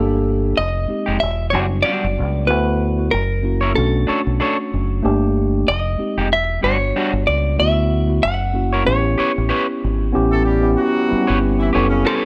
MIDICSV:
0, 0, Header, 1, 7, 480
1, 0, Start_track
1, 0, Tempo, 638298
1, 1860, Time_signature, 4, 2, 24, 8
1, 9212, End_track
2, 0, Start_track
2, 0, Title_t, "Hollow-body jazz guitar"
2, 0, Program_c, 0, 26
2, 432, Note_on_c, 0, 75, 88
2, 900, Note_off_c, 0, 75, 0
2, 903, Note_on_c, 0, 76, 91
2, 1124, Note_off_c, 0, 76, 0
2, 1130, Note_on_c, 0, 73, 89
2, 1196, Note_off_c, 0, 73, 0
2, 1372, Note_on_c, 0, 74, 96
2, 1859, Note_on_c, 0, 71, 85
2, 1871, Note_off_c, 0, 74, 0
2, 2338, Note_off_c, 0, 71, 0
2, 2341, Note_on_c, 0, 70, 84
2, 2790, Note_off_c, 0, 70, 0
2, 2824, Note_on_c, 0, 69, 72
2, 3512, Note_off_c, 0, 69, 0
2, 4273, Note_on_c, 0, 75, 80
2, 4756, Note_off_c, 0, 75, 0
2, 4759, Note_on_c, 0, 76, 88
2, 4973, Note_off_c, 0, 76, 0
2, 4993, Note_on_c, 0, 73, 83
2, 5464, Note_off_c, 0, 73, 0
2, 5467, Note_on_c, 0, 74, 82
2, 5709, Note_off_c, 0, 74, 0
2, 5712, Note_on_c, 0, 76, 92
2, 6186, Note_off_c, 0, 76, 0
2, 6189, Note_on_c, 0, 78, 103
2, 6667, Note_on_c, 0, 73, 83
2, 6679, Note_off_c, 0, 78, 0
2, 7353, Note_off_c, 0, 73, 0
2, 9074, Note_on_c, 0, 69, 95
2, 9212, Note_off_c, 0, 69, 0
2, 9212, End_track
3, 0, Start_track
3, 0, Title_t, "Clean electric guitar"
3, 0, Program_c, 1, 27
3, 798, Note_on_c, 1, 67, 62
3, 808, Note_on_c, 1, 63, 52
3, 811, Note_on_c, 1, 56, 48
3, 874, Note_off_c, 1, 67, 0
3, 879, Note_off_c, 1, 63, 0
3, 881, Note_off_c, 1, 56, 0
3, 1151, Note_on_c, 1, 55, 54
3, 1156, Note_on_c, 1, 62, 62
3, 1161, Note_on_c, 1, 66, 58
3, 1241, Note_off_c, 1, 55, 0
3, 1243, Note_off_c, 1, 62, 0
3, 1246, Note_off_c, 1, 66, 0
3, 1380, Note_on_c, 1, 55, 71
3, 1388, Note_on_c, 1, 62, 76
3, 1396, Note_on_c, 1, 66, 74
3, 1539, Note_off_c, 1, 55, 0
3, 1542, Note_off_c, 1, 62, 0
3, 1546, Note_off_c, 1, 66, 0
3, 2714, Note_on_c, 1, 73, 62
3, 2724, Note_on_c, 1, 70, 53
3, 2728, Note_on_c, 1, 64, 50
3, 2792, Note_off_c, 1, 73, 0
3, 2797, Note_off_c, 1, 70, 0
3, 2799, Note_off_c, 1, 64, 0
3, 3061, Note_on_c, 1, 62, 55
3, 3070, Note_on_c, 1, 69, 70
3, 3074, Note_on_c, 1, 73, 66
3, 3156, Note_off_c, 1, 62, 0
3, 3160, Note_off_c, 1, 69, 0
3, 3162, Note_off_c, 1, 73, 0
3, 3308, Note_on_c, 1, 62, 61
3, 3314, Note_on_c, 1, 69, 72
3, 3323, Note_on_c, 1, 73, 74
3, 3426, Note_off_c, 1, 62, 0
3, 3429, Note_off_c, 1, 69, 0
3, 3433, Note_off_c, 1, 73, 0
3, 4645, Note_on_c, 1, 67, 71
3, 4651, Note_on_c, 1, 63, 59
3, 4655, Note_on_c, 1, 56, 51
3, 4718, Note_off_c, 1, 67, 0
3, 4721, Note_off_c, 1, 63, 0
3, 4723, Note_off_c, 1, 56, 0
3, 4984, Note_on_c, 1, 55, 60
3, 4996, Note_on_c, 1, 62, 67
3, 5002, Note_on_c, 1, 66, 65
3, 5077, Note_off_c, 1, 55, 0
3, 5083, Note_off_c, 1, 62, 0
3, 5086, Note_off_c, 1, 66, 0
3, 5235, Note_on_c, 1, 55, 79
3, 5238, Note_on_c, 1, 62, 89
3, 5249, Note_on_c, 1, 66, 88
3, 5349, Note_off_c, 1, 55, 0
3, 5351, Note_off_c, 1, 62, 0
3, 5357, Note_off_c, 1, 66, 0
3, 6562, Note_on_c, 1, 73, 63
3, 6569, Note_on_c, 1, 70, 58
3, 6571, Note_on_c, 1, 64, 51
3, 6636, Note_off_c, 1, 73, 0
3, 6640, Note_off_c, 1, 64, 0
3, 6640, Note_off_c, 1, 70, 0
3, 6901, Note_on_c, 1, 67, 62
3, 6910, Note_on_c, 1, 71, 66
3, 6916, Note_on_c, 1, 73, 80
3, 6996, Note_off_c, 1, 67, 0
3, 7000, Note_off_c, 1, 71, 0
3, 7003, Note_off_c, 1, 73, 0
3, 7136, Note_on_c, 1, 67, 73
3, 7142, Note_on_c, 1, 71, 84
3, 7144, Note_on_c, 1, 73, 80
3, 7260, Note_off_c, 1, 67, 0
3, 7263, Note_off_c, 1, 71, 0
3, 7264, Note_off_c, 1, 73, 0
3, 8478, Note_on_c, 1, 73, 66
3, 8484, Note_on_c, 1, 71, 60
3, 8494, Note_on_c, 1, 67, 58
3, 8554, Note_off_c, 1, 73, 0
3, 8557, Note_off_c, 1, 71, 0
3, 8562, Note_off_c, 1, 67, 0
3, 8819, Note_on_c, 1, 67, 60
3, 8829, Note_on_c, 1, 71, 64
3, 8836, Note_on_c, 1, 73, 67
3, 8915, Note_off_c, 1, 67, 0
3, 8920, Note_off_c, 1, 71, 0
3, 8924, Note_off_c, 1, 73, 0
3, 9063, Note_on_c, 1, 67, 74
3, 9073, Note_on_c, 1, 71, 76
3, 9078, Note_on_c, 1, 73, 82
3, 9212, Note_off_c, 1, 67, 0
3, 9212, Note_off_c, 1, 71, 0
3, 9212, Note_off_c, 1, 73, 0
3, 9212, End_track
4, 0, Start_track
4, 0, Title_t, "Tine electric piano"
4, 0, Program_c, 2, 4
4, 0, Note_on_c, 2, 58, 104
4, 0, Note_on_c, 2, 62, 87
4, 0, Note_on_c, 2, 67, 90
4, 0, Note_on_c, 2, 69, 103
4, 78, Control_c, 2, 64, 127
4, 420, Note_off_c, 2, 62, 0
4, 424, Note_off_c, 2, 67, 0
4, 426, Note_off_c, 2, 69, 0
4, 428, Control_c, 2, 64, 0
4, 443, Note_off_c, 2, 58, 0
4, 574, Control_c, 2, 64, 127
4, 661, Note_on_c, 2, 56, 65
4, 665, Note_on_c, 2, 60, 63
4, 668, Note_on_c, 2, 63, 59
4, 678, Note_on_c, 2, 67, 68
4, 900, Note_off_c, 2, 56, 0
4, 902, Note_off_c, 2, 60, 0
4, 904, Note_off_c, 2, 63, 0
4, 909, Note_off_c, 2, 67, 0
4, 909, Control_c, 2, 64, 0
4, 1047, Control_c, 2, 64, 127
4, 1141, Note_on_c, 2, 54, 46
4, 1144, Note_on_c, 2, 59, 51
4, 1152, Note_on_c, 2, 62, 56
4, 1154, Note_on_c, 2, 66, 62
4, 1186, Note_on_c, 2, 55, 58
4, 1194, Note_off_c, 2, 54, 0
4, 1702, Note_off_c, 2, 59, 0
4, 1706, Note_off_c, 2, 62, 0
4, 1707, Note_off_c, 2, 66, 0
4, 1723, Note_off_c, 2, 55, 0
4, 1851, Note_on_c, 2, 57, 86
4, 1856, Note_on_c, 2, 59, 72
4, 1864, Note_on_c, 2, 64, 77
4, 1867, Note_on_c, 2, 66, 92
4, 1870, Control_c, 2, 64, 0
4, 2013, Control_c, 2, 64, 127
4, 2136, Note_off_c, 2, 57, 0
4, 2138, Note_off_c, 2, 59, 0
4, 2142, Note_off_c, 2, 64, 0
4, 2144, Note_off_c, 2, 66, 0
4, 2229, Note_on_c, 2, 57, 56
4, 2236, Note_on_c, 2, 59, 54
4, 2241, Note_on_c, 2, 64, 53
4, 2248, Note_on_c, 2, 66, 66
4, 2339, Note_off_c, 2, 57, 0
4, 2342, Note_off_c, 2, 59, 0
4, 2345, Note_off_c, 2, 64, 0
4, 2349, Note_off_c, 2, 66, 0
4, 2351, Control_c, 2, 64, 0
4, 2479, Control_c, 2, 64, 127
4, 2575, Note_on_c, 2, 58, 64
4, 2581, Note_on_c, 2, 61, 64
4, 2585, Note_on_c, 2, 64, 65
4, 2592, Note_on_c, 2, 66, 69
4, 2807, Note_off_c, 2, 61, 0
4, 2812, Note_on_c, 2, 57, 72
4, 2816, Note_on_c, 2, 61, 61
4, 2817, Note_off_c, 2, 58, 0
4, 2819, Note_off_c, 2, 66, 0
4, 2822, Note_off_c, 2, 64, 0
4, 2822, Note_on_c, 2, 62, 66
4, 2828, Note_on_c, 2, 66, 73
4, 2829, Control_c, 2, 64, 0
4, 2951, Control_c, 2, 64, 127
4, 3588, Note_off_c, 2, 57, 0
4, 3590, Note_off_c, 2, 61, 0
4, 3593, Note_off_c, 2, 62, 0
4, 3596, Note_off_c, 2, 66, 0
4, 3779, Note_on_c, 2, 57, 102
4, 3783, Note_on_c, 2, 58, 98
4, 3788, Note_on_c, 2, 62, 92
4, 3790, Control_c, 2, 64, 0
4, 3796, Note_on_c, 2, 67, 113
4, 3908, Control_c, 2, 64, 127
4, 4259, Note_off_c, 2, 57, 0
4, 4262, Note_off_c, 2, 58, 0
4, 4264, Note_off_c, 2, 62, 0
4, 4268, Note_off_c, 2, 67, 0
4, 4269, Control_c, 2, 64, 0
4, 4379, Control_c, 2, 64, 127
4, 4494, Note_on_c, 2, 56, 69
4, 4502, Note_on_c, 2, 60, 63
4, 4506, Note_on_c, 2, 63, 62
4, 4510, Note_on_c, 2, 67, 77
4, 4737, Note_off_c, 2, 56, 0
4, 4741, Note_off_c, 2, 60, 0
4, 4743, Note_off_c, 2, 63, 0
4, 4745, Note_off_c, 2, 67, 0
4, 4750, Control_c, 2, 64, 0
4, 4866, Control_c, 2, 64, 127
4, 4971, Note_on_c, 2, 55, 59
4, 4975, Note_on_c, 2, 59, 59
4, 4981, Note_on_c, 2, 62, 57
4, 4984, Note_on_c, 2, 66, 70
4, 5536, Note_off_c, 2, 55, 0
4, 5538, Note_off_c, 2, 59, 0
4, 5541, Note_off_c, 2, 62, 0
4, 5542, Note_off_c, 2, 66, 0
4, 5698, Note_on_c, 2, 57, 86
4, 5703, Note_on_c, 2, 59, 78
4, 5707, Control_c, 2, 64, 0
4, 5708, Note_on_c, 2, 64, 84
4, 5715, Note_on_c, 2, 66, 94
4, 5858, Control_c, 2, 64, 127
4, 5979, Note_off_c, 2, 57, 0
4, 5982, Note_off_c, 2, 59, 0
4, 5984, Note_off_c, 2, 64, 0
4, 5988, Note_off_c, 2, 66, 0
4, 6066, Note_on_c, 2, 57, 61
4, 6073, Note_on_c, 2, 59, 54
4, 6080, Note_on_c, 2, 64, 54
4, 6087, Note_on_c, 2, 66, 69
4, 6178, Note_off_c, 2, 57, 0
4, 6181, Note_off_c, 2, 59, 0
4, 6184, Note_off_c, 2, 64, 0
4, 6188, Note_off_c, 2, 66, 0
4, 6191, Control_c, 2, 64, 0
4, 6317, Control_c, 2, 64, 127
4, 6414, Note_on_c, 2, 58, 71
4, 6418, Note_on_c, 2, 61, 69
4, 6427, Note_on_c, 2, 64, 65
4, 6429, Note_on_c, 2, 66, 80
4, 6649, Note_off_c, 2, 61, 0
4, 6654, Note_on_c, 2, 59, 74
4, 6657, Note_off_c, 2, 58, 0
4, 6657, Note_off_c, 2, 64, 0
4, 6658, Note_on_c, 2, 61, 66
4, 6664, Note_off_c, 2, 66, 0
4, 6666, Note_on_c, 2, 64, 72
4, 6668, Control_c, 2, 64, 0
4, 6672, Note_on_c, 2, 67, 85
4, 6806, Control_c, 2, 64, 127
4, 7429, Note_off_c, 2, 59, 0
4, 7431, Note_off_c, 2, 61, 0
4, 7435, Note_off_c, 2, 64, 0
4, 7438, Note_off_c, 2, 67, 0
4, 7614, Note_on_c, 2, 59, 100
4, 7620, Note_on_c, 2, 61, 98
4, 7629, Note_on_c, 2, 64, 91
4, 7631, Control_c, 2, 64, 0
4, 7634, Note_on_c, 2, 67, 116
4, 7773, Control_c, 2, 64, 127
4, 7897, Note_off_c, 2, 59, 0
4, 7900, Note_off_c, 2, 61, 0
4, 7904, Note_off_c, 2, 64, 0
4, 7907, Note_off_c, 2, 67, 0
4, 7982, Note_on_c, 2, 59, 83
4, 7991, Note_on_c, 2, 61, 73
4, 7994, Note_on_c, 2, 64, 74
4, 8000, Note_on_c, 2, 67, 87
4, 8260, Note_off_c, 2, 59, 0
4, 8264, Note_off_c, 2, 61, 0
4, 8266, Note_off_c, 2, 64, 0
4, 8269, Note_off_c, 2, 67, 0
4, 8335, Note_on_c, 2, 59, 88
4, 8342, Note_on_c, 2, 60, 58
4, 8347, Note_on_c, 2, 64, 77
4, 8355, Note_on_c, 2, 55, 93
4, 8391, Note_on_c, 2, 61, 74
4, 8394, Note_off_c, 2, 60, 0
4, 8717, Note_off_c, 2, 59, 0
4, 8723, Note_off_c, 2, 64, 0
4, 8727, Note_off_c, 2, 55, 0
4, 8744, Note_off_c, 2, 61, 0
4, 8822, Note_on_c, 2, 59, 73
4, 8827, Note_on_c, 2, 61, 76
4, 8831, Note_on_c, 2, 64, 69
4, 8837, Note_on_c, 2, 69, 92
4, 9212, Note_off_c, 2, 59, 0
4, 9212, Note_off_c, 2, 61, 0
4, 9212, Note_off_c, 2, 64, 0
4, 9212, Note_off_c, 2, 69, 0
4, 9212, End_track
5, 0, Start_track
5, 0, Title_t, "Horn section"
5, 0, Program_c, 3, 61
5, 7757, Note_on_c, 3, 69, 80
5, 7758, Note_on_c, 3, 57, 73
5, 7842, Note_off_c, 3, 69, 0
5, 7843, Note_off_c, 3, 57, 0
5, 7859, Note_on_c, 3, 67, 77
5, 7860, Note_on_c, 3, 55, 75
5, 8051, Note_off_c, 3, 67, 0
5, 8052, Note_off_c, 3, 55, 0
5, 8097, Note_on_c, 3, 54, 72
5, 8099, Note_on_c, 3, 66, 86
5, 8549, Note_off_c, 3, 54, 0
5, 8550, Note_off_c, 3, 66, 0
5, 8711, Note_on_c, 3, 52, 65
5, 8712, Note_on_c, 3, 64, 73
5, 8798, Note_off_c, 3, 52, 0
5, 8799, Note_off_c, 3, 64, 0
5, 8948, Note_on_c, 3, 49, 63
5, 8948, Note_on_c, 3, 61, 65
5, 9141, Note_off_c, 3, 49, 0
5, 9141, Note_off_c, 3, 61, 0
5, 9212, End_track
6, 0, Start_track
6, 0, Title_t, "Fingered electric bass"
6, 0, Program_c, 4, 33
6, 0, Note_on_c, 4, 31, 77
6, 399, Note_off_c, 4, 31, 0
6, 440, Note_on_c, 4, 29, 81
6, 647, Note_off_c, 4, 29, 0
6, 812, Note_on_c, 4, 29, 70
6, 901, Note_off_c, 4, 29, 0
6, 921, Note_on_c, 4, 28, 92
6, 1160, Note_off_c, 4, 28, 0
6, 1160, Note_on_c, 4, 30, 72
6, 1367, Note_off_c, 4, 30, 0
6, 1535, Note_on_c, 4, 30, 82
6, 1643, Note_on_c, 4, 37, 81
6, 1654, Note_off_c, 4, 30, 0
6, 1880, Note_off_c, 4, 37, 0
6, 1880, Note_on_c, 4, 38, 84
6, 2320, Note_off_c, 4, 38, 0
6, 2361, Note_on_c, 4, 30, 94
6, 2800, Note_off_c, 4, 30, 0
6, 2839, Note_on_c, 4, 35, 102
6, 3047, Note_off_c, 4, 35, 0
6, 3209, Note_on_c, 4, 35, 80
6, 3299, Note_off_c, 4, 35, 0
6, 3561, Note_on_c, 4, 30, 79
6, 3768, Note_off_c, 4, 30, 0
6, 3798, Note_on_c, 4, 31, 92
6, 4239, Note_off_c, 4, 31, 0
6, 4273, Note_on_c, 4, 29, 99
6, 4484, Note_off_c, 4, 29, 0
6, 4644, Note_on_c, 4, 29, 77
6, 4753, Note_off_c, 4, 29, 0
6, 4753, Note_on_c, 4, 28, 99
6, 4963, Note_off_c, 4, 28, 0
6, 4989, Note_on_c, 4, 31, 76
6, 5201, Note_off_c, 4, 31, 0
6, 5363, Note_on_c, 4, 31, 85
6, 5456, Note_off_c, 4, 31, 0
6, 5477, Note_on_c, 4, 37, 89
6, 5685, Note_off_c, 4, 37, 0
6, 5717, Note_on_c, 4, 38, 93
6, 6158, Note_off_c, 4, 38, 0
6, 6201, Note_on_c, 4, 30, 90
6, 6640, Note_off_c, 4, 30, 0
6, 6675, Note_on_c, 4, 33, 111
6, 6884, Note_off_c, 4, 33, 0
6, 7054, Note_on_c, 4, 33, 90
6, 7142, Note_off_c, 4, 33, 0
6, 7401, Note_on_c, 4, 32, 84
6, 7608, Note_off_c, 4, 32, 0
6, 7641, Note_on_c, 4, 33, 92
6, 8080, Note_off_c, 4, 33, 0
6, 8495, Note_on_c, 4, 31, 71
6, 8802, Note_off_c, 4, 31, 0
6, 8838, Note_on_c, 4, 30, 87
6, 9046, Note_off_c, 4, 30, 0
6, 9212, End_track
7, 0, Start_track
7, 0, Title_t, "Muted fingered electric bass strokes"
7, 3079, Note_on_c, 9, 29, 42
7, 3154, Note_off_c, 9, 29, 0
7, 4513, Note_on_c, 9, 29, 48
7, 4588, Note_off_c, 9, 29, 0
7, 6918, Note_on_c, 9, 29, 39
7, 6993, Note_off_c, 9, 29, 0
7, 8365, Note_on_c, 9, 29, 48
7, 8440, Note_off_c, 9, 29, 0
7, 9212, End_track
0, 0, End_of_file